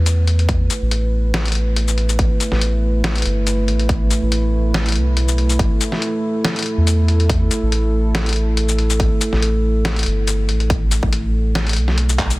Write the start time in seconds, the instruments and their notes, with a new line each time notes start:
Already playing: sub bass E2, analog synth pad A3 E4 B4
0.06 closed hi-hat, shaker
0.27 closed hi-hat
0.39 closed hi-hat
0.49 kick, closed hi-hat
0.70 closed hi-hat, shaker
0.82 sub bass A1
0.91 closed hi-hat
1.34 snare, closed hi-hat
1.45 closed hi-hat
1.48 closed hi-hat
1.52 closed hi-hat
1.55 closed hi-hat
1.76 closed hi-hat
1.88 shaker
1.98 closed hi-hat
2.09 closed hi-hat, shaker
2.19 kick, closed hi-hat
2.40 closed hi-hat, shaker
2.52 sub bass A1, snare
2.61 closed hi-hat
3.04 snare, closed hi-hat
3.16 closed hi-hat
3.18 closed hi-hat
3.22 sub bass G1, closed hi-hat
3.25 closed hi-hat
3.47 closed hi-hat, shaker
3.68 sub bass A1, closed hi-hat
3.80 closed hi-hat
3.89 kick, closed hi-hat
4.11 closed hi-hat, shaker
4.22 sub bass A1
4.32 closed hi-hat
4.74 snare, closed hi-hat
4.86 closed hi-hat
4.89 closed hi-hat
4.92 closed hi-hat
4.95 sub bass C2, closed hi-hat
5.07 sub bass B1
5.17 closed hi-hat
5.28 shaker
5.38 closed hi-hat
5.50 closed hi-hat, shaker
5.59 sub bass A1, analog synth pad A4, kick, closed hi-hat
5.81 closed hi-hat, shaker
5.92 snare
6.02 closed hi-hat
6.45 snare, closed hi-hat
6.56 closed hi-hat
6.59 closed hi-hat
6.63 closed hi-hat
6.66 closed hi-hat
6.77 sub bass E2
6.87 closed hi-hat, shaker
7.08 closed hi-hat
7.20 closed hi-hat
7.30 kick, closed hi-hat
7.51 closed hi-hat, shaker
7.62 sub bass A1
7.72 closed hi-hat
8.15 snare, closed hi-hat
8.26 closed hi-hat
8.29 closed hi-hat
8.33 closed hi-hat
8.36 closed hi-hat
8.57 closed hi-hat
8.69 shaker
8.79 closed hi-hat
8.90 closed hi-hat, shaker
9.00 kick, closed hi-hat
9.21 closed hi-hat, shaker
9.33 sub bass A1, snare
9.42 closed hi-hat
9.85 snare, closed hi-hat
9.96 closed hi-hat
9.99 closed hi-hat
10.03 closed hi-hat
10.06 sub bass G1, closed hi-hat
10.27 closed hi-hat, shaker
10.49 sub bass A1, closed hi-hat
10.60 closed hi-hat
10.70 kick, closed hi-hat
10.91 closed hi-hat, shaker
11.03 sub bass A1, kick
11.13 closed hi-hat
11.55 snare, closed hi-hat
11.67 closed hi-hat
11.69 closed hi-hat
11.73 sub bass B1, closed hi-hat
11.76 closed hi-hat
11.88 snare
11.98 closed hi-hat
12.09 shaker
12.19 kick, clap, closed hi-hat
12.30 closed hi-hat, shaker